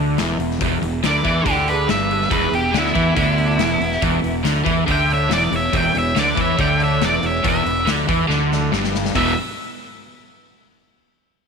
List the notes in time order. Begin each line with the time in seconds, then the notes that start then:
Already playing: D2 D3
0.18 E1 E2, snare, open hi-hat
0.39 E1 E2, open hi-hat
0.51 snare
0.61 E1 E2, kick, open hi-hat
0.82 E1 E2, open hi-hat
1.03 D2 D3 D5, snare, open hi-hat
1.07 B4
1.24 E2 E3, kick, open hi-hat
1.46 D2 D3 E4, kick, open hi-hat
1.50 G4
1.68 G#4 B4, open hi-hat
1.88 G1 G2 B4 E5, snare, open hi-hat
2.11 open hi-hat
2.22 snare
2.30 E1 E2 G#4 B4, kick, open hi-hat
2.51 E1 E2 G4, open hi-hat
2.56 D4
2.73 D2 D3, snare, open hi-hat
2.78 B3 E4
2.86 snare
2.94 E2 E3, kick, open hi-hat
3.16 D2 D3, kick, open hi-hat
3.38 open hi-hat
3.58 E1 E2, snare, open hi-hat
3.80 E1 E2, open hi-hat
3.92 snare
4.02 E1 E2, kick, open hi-hat
4.22 E1 E2, open hi-hat
4.44 D2 D3, snare, open hi-hat
4.64 E2 E3, kick, open hi-hat
4.86 D2 D3, kick, open hi-hat
4.91 E5 G5
5.10 C#5 E5, open hi-hat
5.29 E1 E2, snare, open hi-hat
5.33 B4 D5
5.51 E1 E2 C#5, open hi-hat
5.56 E5
5.72 E1 E2, kick, open hi-hat
5.77 E5 G5
5.94 E1 E2 C#5, open hi-hat
5.98 E5
6.16 D2 D3 D5, snare, open hi-hat
6.20 B4
6.36 E2 E3, kick, open hi-hat
6.41 C#5 E5
6.58 D2 D3 G5, kick, open hi-hat
6.62 E5
6.80 C#5 E5, open hi-hat
7.01 E1 E2 B4 D5, snare, open hi-hat
7.22 E1 E2 C#5 E5, open hi-hat
7.43 E1 E2, kick, open hi-hat
7.48 B4 E5
7.65 E1 E2, open hi-hat
7.86 D2 D3, snare, open hi-hat
8.08 E2 E3, kick, open hi-hat
8.28 D2 D3, snare
8.52 snare
8.71 G1 G2, snare
8.84 snare
8.95 snare
9.05 snare
9.15 E1 E2 B2 E3 B4 E5, kick, open hi-hat